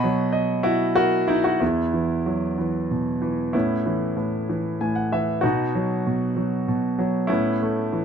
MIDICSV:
0, 0, Header, 1, 2, 480
1, 0, Start_track
1, 0, Tempo, 615385
1, 753, Tempo, 643087
1, 1237, Time_signature, 3, 2, 24, 8
1, 3153, Tempo, 622407
1, 6135, End_track
2, 0, Start_track
2, 0, Title_t, "Grand piano"
2, 0, Program_c, 0, 0
2, 0, Control_c, 0, 64, 127
2, 0, Note_on_c, 0, 47, 62
2, 0, Note_on_c, 0, 75, 64
2, 0, Note_on_c, 0, 78, 62
2, 0, Note_on_c, 0, 83, 90
2, 30, Note_on_c, 0, 54, 44
2, 241, Note_off_c, 0, 75, 0
2, 253, Note_on_c, 0, 75, 48
2, 494, Note_on_c, 0, 64, 65
2, 498, Note_on_c, 0, 66, 52
2, 719, Note_off_c, 0, 83, 0
2, 724, Note_off_c, 0, 78, 0
2, 733, Note_off_c, 0, 66, 0
2, 745, Note_on_c, 0, 66, 83
2, 746, Note_on_c, 0, 70, 47
2, 754, Note_off_c, 0, 64, 0
2, 965, Note_off_c, 0, 54, 0
2, 985, Note_on_c, 0, 64, 63
2, 994, Note_on_c, 0, 63, 47
2, 997, Note_off_c, 0, 66, 0
2, 1108, Note_on_c, 0, 66, 68
2, 1114, Note_off_c, 0, 64, 0
2, 1202, Note_off_c, 0, 75, 0
2, 1204, Note_off_c, 0, 47, 0
2, 1219, Note_off_c, 0, 70, 0
2, 1228, Note_on_c, 0, 64, 43
2, 1230, Note_off_c, 0, 63, 0
2, 1234, Note_on_c, 0, 40, 37
2, 1237, Note_off_c, 0, 66, 0
2, 1243, Note_on_c, 0, 59, 30
2, 1248, Control_c, 0, 64, 0
2, 1372, Control_c, 0, 64, 127
2, 1477, Note_on_c, 0, 52, 29
2, 1720, Note_on_c, 0, 54, 30
2, 1949, Note_off_c, 0, 52, 0
2, 1961, Note_on_c, 0, 52, 30
2, 2203, Note_on_c, 0, 47, 28
2, 2422, Note_off_c, 0, 52, 0
2, 2434, Note_on_c, 0, 52, 33
2, 2646, Note_off_c, 0, 64, 0
2, 2649, Note_off_c, 0, 40, 0
2, 2650, Note_off_c, 0, 54, 0
2, 2653, Note_off_c, 0, 59, 0
2, 2665, Note_off_c, 0, 47, 0
2, 2668, Note_on_c, 0, 64, 47
2, 2669, Note_off_c, 0, 52, 0
2, 2676, Note_on_c, 0, 45, 41
2, 2679, Note_on_c, 0, 59, 32
2, 2679, Note_on_c, 0, 61, 36
2, 2689, Control_c, 0, 64, 0
2, 2818, Control_c, 0, 64, 127
2, 2913, Note_on_c, 0, 52, 34
2, 3132, Note_off_c, 0, 45, 0
2, 3143, Note_on_c, 0, 45, 30
2, 3383, Note_off_c, 0, 52, 0
2, 3395, Note_on_c, 0, 52, 35
2, 3627, Note_off_c, 0, 45, 0
2, 3637, Note_on_c, 0, 80, 42
2, 3639, Note_on_c, 0, 45, 34
2, 3749, Note_off_c, 0, 80, 0
2, 3749, Note_on_c, 0, 78, 40
2, 3865, Note_off_c, 0, 78, 0
2, 3867, Note_off_c, 0, 52, 0
2, 3879, Note_on_c, 0, 52, 33
2, 3881, Note_on_c, 0, 76, 45
2, 4088, Note_off_c, 0, 59, 0
2, 4088, Note_off_c, 0, 61, 0
2, 4102, Note_on_c, 0, 66, 58
2, 4104, Note_off_c, 0, 76, 0
2, 4107, Note_off_c, 0, 45, 0
2, 4113, Note_off_c, 0, 52, 0
2, 4116, Note_on_c, 0, 59, 39
2, 4118, Note_on_c, 0, 63, 41
2, 4119, Note_on_c, 0, 47, 46
2, 4131, Control_c, 0, 64, 0
2, 4157, Note_off_c, 0, 64, 0
2, 4264, Control_c, 0, 64, 127
2, 4364, Note_on_c, 0, 54, 38
2, 4593, Note_off_c, 0, 47, 0
2, 4604, Note_on_c, 0, 47, 37
2, 4826, Note_off_c, 0, 54, 0
2, 4838, Note_on_c, 0, 54, 33
2, 5070, Note_off_c, 0, 47, 0
2, 5082, Note_on_c, 0, 47, 35
2, 5305, Note_off_c, 0, 54, 0
2, 5317, Note_on_c, 0, 54, 39
2, 5519, Note_off_c, 0, 59, 0
2, 5520, Note_off_c, 0, 63, 0
2, 5538, Note_on_c, 0, 64, 59
2, 5541, Note_off_c, 0, 47, 0
2, 5546, Note_off_c, 0, 54, 0
2, 5550, Note_on_c, 0, 59, 43
2, 5551, Note_on_c, 0, 61, 48
2, 5559, Note_on_c, 0, 45, 51
2, 5561, Control_c, 0, 64, 0
2, 5586, Note_off_c, 0, 66, 0
2, 5718, Control_c, 0, 64, 127
2, 5804, Note_on_c, 0, 57, 35
2, 6040, Note_on_c, 0, 52, 36
2, 6135, Note_off_c, 0, 45, 0
2, 6135, Note_off_c, 0, 52, 0
2, 6135, Note_off_c, 0, 57, 0
2, 6135, Note_off_c, 0, 59, 0
2, 6135, Note_off_c, 0, 61, 0
2, 6135, Note_off_c, 0, 64, 0
2, 6135, End_track
0, 0, End_of_file